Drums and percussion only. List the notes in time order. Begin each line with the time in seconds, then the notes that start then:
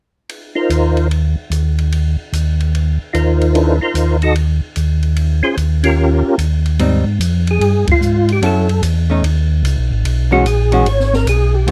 0.29 ride
0.70 hi-hat pedal, ride
0.97 ride
1.11 ride
1.52 hi-hat pedal, ride
1.79 ride
1.92 ride
2.33 hi-hat pedal, ride
2.60 ride
2.75 ride
3.15 hi-hat pedal, ride
3.41 ride
3.55 ride
3.95 hi-hat pedal, ride
4.22 ride
4.35 ride
4.76 hi-hat pedal, ride
5.03 ride
5.16 ride
5.57 hi-hat pedal, ride
5.84 ride
6.39 hi-hat pedal, ride
6.66 ride
6.79 ride
7.21 hi-hat pedal, ride
7.47 ride
7.61 ride
7.87 kick, ride
8.02 hi-hat pedal
8.29 ride
8.42 ride
8.69 ride
8.83 hi-hat pedal, ride
9.24 ride
9.65 hi-hat pedal, ride
10.05 ride
10.46 hi-hat pedal, ride
10.72 ride
10.86 ride
11.00 snare
11.13 snare
11.27 hi-hat pedal, ride
11.68 ride